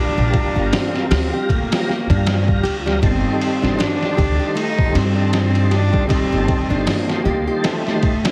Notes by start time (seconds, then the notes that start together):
Already playing: G3 D4 F4 A#4
0.18 A#1
0.34 kick, ride
0.55 G1 D4
0.72 C4 D4, snare, open hi-hat
0.96 snare
1.08 D2 G3 F4 G4, snare, open hi-hat
1.14 A#5
1.33 G4
1.49 A3 A#3, kick, ride
1.72 snare, open hi-hat
1.89 snare
2.10 G2 D4, kick, ride
2.27 snare, ride
2.48 kick
2.63 D2 G4, ride
2.86 G3, snare
3.00 G1 D#3 G3, kick, ride
3.04 C4 A4 C5
3.41 ride
3.62 G1 D4, snare
3.79 D4, snare, ride
4.03 snare
4.14 D#3 G3 G4
4.18 D2 A4 C5, kick, ride
4.40 G4
4.55 A3 D#4, ride
4.79 kick
4.95 G2 C4, snare, ride
5.16 D4
5.33 snare, ride
5.55 ride
5.71 D4 G4, snare, ride
5.93 G3, kick
6.07 D#3 G3 C4 A4, kick, ride
6.13 C5
6.32 G1
6.48 kick, ride
6.70 G1 D4
6.87 A#3 D4, snare, open hi-hat
7.09 snare
7.24 D2 D#3 G3 G4 A4
7.29 C5
7.47 G4
7.64 A3, snare, ride
7.87 snare
8.03 kick, ride
8.22 D#3 G3 D4, snare, ride
8.26 A4